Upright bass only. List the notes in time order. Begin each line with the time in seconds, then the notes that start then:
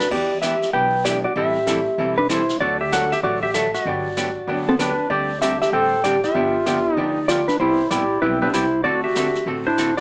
0.11 E2
0.73 B1
1.36 A1
1.98 E1
2.60 D2
3.23 A1
3.85 G1
4.47 D2
5.10 D2
5.72 A1
6.35 G1
6.97 D2
7.60 C2
7.91 A1
8.22 B1
8.53 C2
8.84 D2
9.46 A1